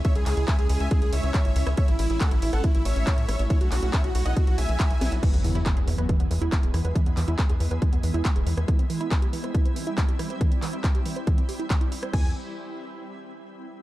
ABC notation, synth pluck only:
X:1
M:4/4
L:1/16
Q:1/4=139
K:E
V:1 name="Synth pluck"
z16 | z16 | z16 | E, B, E, E B, G E, B E, B, E, E B, G E, B |
E, B, E, E B, G E, B E, B, E, E B, G E, B | E, =C E, E C =G E, =c E, C E, E C G E, c | E, =C E, E C =G E, =c E, C G E E, E E c | E,2 z12 z2 |]